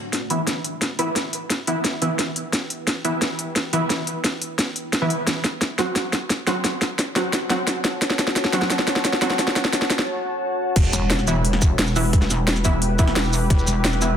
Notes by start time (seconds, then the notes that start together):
Already playing: E4 B4 F#5 G5
0.13 snare, closed hi-hat
0.30 E3 B3 E4, closed hi-hat
0.47 snare, closed hi-hat
0.64 closed hi-hat
0.82 snare, closed hi-hat
0.99 E3 B3 E4, closed hi-hat
1.16 snare, closed hi-hat
1.33 closed hi-hat
1.50 snare, closed hi-hat
1.67 E3 B3 E4, closed hi-hat
1.85 snare, closed hi-hat
2.02 E3 B3 E4, closed hi-hat
2.19 snare, closed hi-hat
2.36 closed hi-hat
2.53 E5, snare, closed hi-hat
2.70 closed hi-hat
2.87 snare, closed hi-hat
3.05 E3 B3 E4, closed hi-hat
3.22 snare, closed hi-hat
3.39 closed hi-hat
3.56 snare, closed hi-hat
3.73 E3 B3 E4, closed hi-hat
3.90 snare, closed hi-hat
4.07 closed hi-hat
4.24 snare, closed hi-hat
4.42 closed hi-hat
4.59 snare, closed hi-hat
4.76 closed hi-hat
4.93 snare, closed hi-hat
5.02 E3 B3 E4
5.10 closed hi-hat
5.27 F#4 C#5 F#5 A5, snare, closed hi-hat
5.44 snare, closed hi-hat
5.62 snare, closed hi-hat
5.79 F#3 C4 F#4, snare, closed hi-hat
5.96 snare, closed hi-hat
6.13 snare, closed hi-hat
6.30 snare, closed hi-hat
6.47 F#3 C4 F#4, snare, closed hi-hat
6.64 snare, closed hi-hat
6.82 snare, closed hi-hat
6.99 snare, closed hi-hat
7.16 F#3 C4 F#4, snare, closed hi-hat
7.33 snare, closed hi-hat
7.50 F#3 C4 F#4, snare, closed hi-hat
7.67 snare, closed hi-hat
7.85 snare, closed hi-hat
8.02 snare, closed hi-hat
8.10 snare
8.19 snare, closed hi-hat
8.27 snare
8.36 snare, closed hi-hat
8.45 snare
8.53 F#3 C4 F#4, snare, closed hi-hat
8.62 snare
8.70 snare, closed hi-hat
8.79 snare
8.87 snare, closed hi-hat
8.96 snare
9.05 snare, closed hi-hat
9.13 snare
9.22 F#3 C4 F#4, snare, closed hi-hat
9.30 snare
9.39 snare, closed hi-hat
9.48 snare
9.56 snare, closed hi-hat
9.65 snare
9.73 snare, closed hi-hat
9.82 snare
9.90 snare, closed hi-hat
9.99 snare
10.76 E1 E4 G4 B4, kick, closed hi-hat, crash, impact
10.85 shaker
10.93 E1, closed hi-hat, shaker
11.10 snare, closed hi-hat
11.19 snare, shaker
11.27 E3 B3 E4, closed hi-hat, shaker
11.45 closed hi-hat
11.53 snare
11.62 kick, closed hi-hat, shaker
11.79 E1, snare, closed hi-hat
11.87 shaker
11.96 E3 B3 E4, open hi-hat, shaker
12.13 kick, closed hi-hat
12.22 snare, shaker
12.30 E1, snare, closed hi-hat, shaker
12.47 snare, closed hi-hat
12.56 snare, shaker
12.65 E3 B3 E4, kick, closed hi-hat, shaker
12.82 closed hi-hat
12.99 E3 B3 E4, kick, closed hi-hat, shaker
13.08 snare
13.16 E1, snare, closed hi-hat
13.25 shaker
13.33 open hi-hat, shaker
13.50 E1, kick, closed hi-hat
13.59 shaker
13.67 E1, closed hi-hat, shaker
13.85 snare, closed hi-hat
13.93 snare, shaker
14.02 E3 B3 E4, closed hi-hat, shaker